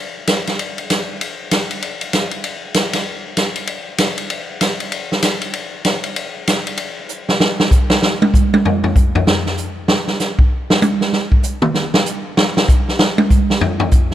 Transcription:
0.27 snare medium
0.27 hi-hat pedal medium
0.27 ride medium
0.47 snare soft
0.47 ride soft
0.59 ride medium
0.78 ride soft
0.90 snare medium
0.90 hi-hat pedal medium
0.90 ride medium
1.21 ride medium
1.51 snare medium
1.51 hi-hat pedal medium
1.51 ride medium
1.71 ride soft
1.82 ride medium
2.01 ride soft
2.13 snare medium
2.13 hi-hat pedal medium
2.13 ride medium
2.31 ride soft
2.44 ride medium
2.74 snare medium
2.74 hi-hat pedal medium
2.74 ride medium
2.93 snare soft
2.93 ride medium
3.37 snare medium
3.37 hi-hat pedal medium
3.37 ride medium
3.56 ride soft
3.67 ride medium
3.98 snare medium
3.98 hi-hat pedal medium
3.98 ride medium
4.18 ride soft
4.30 ride medium
4.61 snare medium
4.61 hi-hat pedal medium
4.61 ride medium
4.80 ride soft
4.92 ride medium
5.12 snare medium
5.23 snare medium
5.23 hi-hat pedal medium
5.23 ride medium
5.42 ride soft
5.54 ride medium
5.85 snare medium
5.85 hi-hat pedal soft
5.85 ride medium
6.04 ride soft
6.16 ride medium
6.47 snare medium
6.47 hi-hat pedal medium
6.47 ride medium
6.67 ride soft
6.77 ride medium
7.09 hi-hat pedal medium
7.29 snare medium
7.40 snare medium
7.60 snare medium
7.71 kick medium
7.71 hi-hat pedal medium
7.90 snare loud
8.02 snare medium
8.22 high tom loud
8.34 kick medium
8.34 hi-hat pedal medium
8.54 high tom medium
8.65 floor tom loud
8.84 floor tom medium
8.96 kick medium
8.96 hi-hat pedal medium
9.15 floor tom loud
9.27 snare medium
9.46 snare soft
9.57 hi-hat pedal medium
9.88 snare loud
10.07 snare soft
10.20 snare soft
10.20 hi-hat pedal medium
10.39 kick medium
10.70 snare loud
10.82 hi-hat pedal medium
10.82 high tom medium
11.01 snare soft
11.13 snare medium
11.32 kick medium
11.43 hi-hat pedal medium
11.62 mid tom loud
11.74 snare medium
11.94 snare loud
12.06 hi-hat pedal medium
12.37 snare loud
12.57 snare medium
12.69 kick medium
12.69 hi-hat pedal medium
12.88 snare soft
12.99 snare loud
13.18 high tom loud
13.30 kick medium
13.30 hi-hat pedal medium
13.50 snare medium
13.61 floor tom loud
13.80 floor tom loud
13.91 kick medium
13.91 hi-hat pedal medium
14.11 snare soft

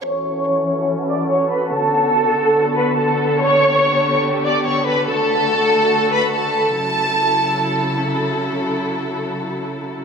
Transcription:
0.04 1.70 E3 medium
0.04 1.70 C#4 medium
0.04 3.36 F#4 medium
0.04 5.03 A4 medium
0.04 0.84 C#5 loud
0.04 0.84 C#6 medium
1.09 1.27 D5 medium
1.09 1.27 D6 medium
1.30 1.48 C#5 medium
1.30 1.48 C#6 medium
1.51 1.69 B4 medium
1.51 1.69 B5 medium
1.72 6.71 D3 medium
1.72 5.04 B3 medium
1.72 2.73 A4 loud
1.72 2.73 A5 medium
2.77 2.94 B4 medium
2.77 2.95 B5 medium
2.98 3.37 A4 medium
2.98 3.37 A5 medium
3.40 5.06 G4 medium
3.40 4.20 C#5 loud
3.40 4.20 C#6 medium
4.45 4.62 D5 medium
4.45 4.63 D6 medium
4.66 4.83 C#5 medium
4.66 4.84 C#6 medium
4.87 5.04 B4 medium
4.87 5.05 B5 medium
5.07 6.74 A3 medium
5.07 6.74 F#4 medium
5.07 6.08 A4 medium
5.07 6.74 A4 medium
5.07 6.09 A5 medium
6.13 6.30 B4 medium
6.13 6.31 B5 medium
6.33 6.73 A4 medium
6.33 6.73 A5 medium
6.75 10.05 C#3 medium
6.75 10.05 F#3 medium
6.75 10.05 E4 medium
6.75 10.05 A4 medium
6.75 7.97 A5 medium

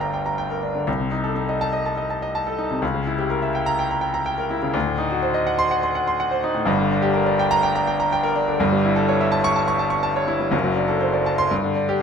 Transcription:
0.00 0.83 G1 medium
0.00 0.83 G2 medium
0.00 0.75 D3 medium
0.00 0.63 D4 medium
0.00 0.90 G4 medium
0.00 0.50 A#4 medium
0.00 0.90 D5 medium
0.00 0.14 G5 medium
0.00 0.26 A#5 medium
0.14 0.33 G5 medium
0.26 0.45 A#5 medium
0.38 0.58 G5 medium
0.50 0.70 A#4 medium
0.63 0.82 D4 medium
0.75 0.87 D3 medium
0.87 2.78 C2 medium
1.00 1.19 C3 medium
1.11 1.31 D#4 medium
1.24 1.43 A4 medium
1.36 1.55 D#4 medium
1.49 1.68 D#5 medium
1.61 1.80 A5 loud
1.73 1.92 D#5 medium
1.86 2.05 A5 medium
1.97 2.17 D#5 medium
2.10 2.29 A5 medium
2.22 2.41 D#5 medium
2.35 2.54 A5 medium
2.47 2.66 A4 medium
2.58 2.77 D#4 medium
2.70 2.82 C3 medium
2.82 4.71 C#2 medium
2.94 3.14 C#3 medium
3.07 3.26 E4 medium
3.19 3.38 G4 medium
3.30 3.49 A#4 medium
3.42 3.62 E5 medium
3.55 3.74 G5 medium
3.66 3.86 A#5 loud
3.79 3.98 G5 medium
3.91 4.10 A#5 medium
4.01 4.21 G5 medium
4.14 4.33 A#5 medium
4.26 4.45 G5 medium
4.38 4.57 A#4 medium
4.50 4.70 E4 medium
4.62 4.75 C#3 medium
4.74 6.62 D2 loud
4.86 5.06 A2 medium
4.98 5.18 D#4 medium
5.10 5.30 F#4 medium
5.22 5.42 C5 medium
5.34 5.54 D#5 medium
5.47 5.66 F#5 medium
5.59 5.78 C6 loud
5.71 5.90 F#5 medium
5.83 6.02 C6 medium
5.95 6.14 F#5 medium
6.07 6.26 C6 medium
6.20 6.39 F#5 medium
6.31 6.50 C5 medium
6.44 6.62 D#4 medium
6.54 6.67 A2 medium
6.66 8.55 G1 medium
6.66 8.56 G2 loud
6.79 6.98 D3 medium
6.91 7.10 D4 medium
7.02 7.22 G4 medium
7.13 7.33 A#4 medium
7.26 7.46 D5 medium
7.39 7.58 G5 medium
7.51 7.70 A#5 loud
7.63 7.82 G5 loud
7.75 7.95 A#5 medium
7.87 8.07 G5 medium
8.00 8.19 A#5 medium
8.13 8.31 G5 medium
8.23 8.43 A#4 medium
8.36 8.55 D4 medium
8.48 8.60 D3 medium
8.60 10.49 G1 loud
8.60 10.49 G2 loud
8.72 8.92 G3 medium
8.84 9.04 E4 medium
8.96 9.15 A4 medium
9.08 9.27 C#5 medium
9.21 9.40 E5 medium
9.32 9.51 A5 loud
9.44 9.63 C#6 loud
9.56 9.75 A5 medium
9.68 9.87 C#6 loud
9.79 9.99 A5 medium
9.90 10.11 C#6 medium
10.03 10.23 A5 loud
10.16 10.36 C#5 medium
10.28 10.48 E4 medium
10.40 10.53 G3 medium
10.51 11.47 F#1 loud
10.51 11.47 F#2 loud
10.64 10.84 F#3 medium
10.76 10.96 D4 medium
10.88 11.08 A4 medium
11.01 11.21 C5 medium
11.14 11.33 D5 medium
11.26 11.46 A5 medium
11.38 11.51 C6 loud
11.51 12.00 G2 medium
11.63 11.83 D3 medium
11.76 11.96 D4 medium
11.89 12.01 G4 medium

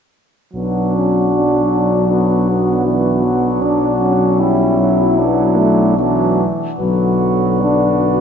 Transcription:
0.53 3.59 B1 soft
0.53 1.28 F#3 soft
0.53 0.91 B3 soft
0.53 2.12 D4 soft
0.53 2.05 F#4 soft
0.94 1.33 C#4 soft
1.33 2.88 F#3 soft
1.33 3.61 D4 soft
2.08 2.48 B3 soft
2.08 2.83 F#4 soft
2.50 3.63 B3 soft
2.86 3.25 E3 soft
2.86 4.42 F#4 soft
3.23 4.43 F#3 soft
3.62 6.42 B1 soft
3.62 4.41 D4 soft
3.62 4.01 D4 soft
4.01 5.18 C#4 soft
4.39 4.81 G3 soft
4.39 5.20 E4 soft
4.39 5.96 E4 soft
4.80 5.97 F#3 soft
5.19 5.58 B3 soft
5.19 5.98 D4 soft
5.57 5.97 A3 soft
5.96 6.75 E3 medium
5.96 6.45 F#3 soft
5.96 6.45 B3 soft
5.96 6.46 D4 soft
5.96 6.45 F#4 soft
6.79 8.21 B1 soft
6.79 8.21 D3 soft
6.79 7.63 F#3 soft
6.79 8.21 F#4 soft
6.79 8.21 B4 soft
7.62 8.21 D4 soft

